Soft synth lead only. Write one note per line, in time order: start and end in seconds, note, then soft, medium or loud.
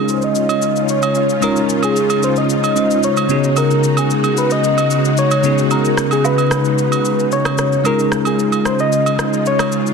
0.00 0.11 G#4 medium
0.10 0.25 C5 medium
0.24 0.92 D#5 loud
0.90 1.45 C#5 loud
1.44 1.86 A#4 loud
1.84 2.23 G#4 medium
2.24 2.39 C5 loud
2.38 3.06 D#5 loud
3.04 3.59 C#5 loud
3.58 4.00 A#4 loud
3.99 4.40 G#4 medium
4.38 4.54 B4 loud
4.52 5.20 D#5 loud
5.19 5.71 C#5 loud
5.72 6.14 A#4 loud
6.13 6.27 G#4 medium
6.26 6.52 B4 loud
6.52 7.34 B4 loud
7.33 7.88 C#5 loud
7.86 8.28 A#4 loud
8.27 8.68 G#4 medium
8.66 8.82 C5 medium
8.80 9.49 D#5 loud
9.47 9.94 C#5 loud